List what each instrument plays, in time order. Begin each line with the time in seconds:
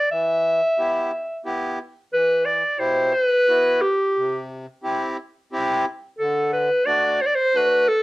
Already playing: clarinet D5
0.12 accordion E3, clarinet E5
0.78 accordion B3 E4 G4
1.45 accordion B3 E4 G4
2.13 accordion E3, clarinet B4
2.46 clarinet D5
2.79 accordion B2 E4 G4, clarinet C5
3.13 clarinet B4
3.48 accordion B3 E4 F#4
3.81 clarinet G4
4.17 accordion C3
4.83 accordion C4 E4 G4
5.52 accordion C4 E4 G4
6.19 accordion D3, clarinet A4
6.53 clarinet B4
6.86 accordion A3 D4 F#4, clarinet D5
7.22 clarinet C5
7.26 clarinet D5
7.35 clarinet C5
7.55 accordion A3 D4 F#4, clarinet B4
7.88 clarinet A4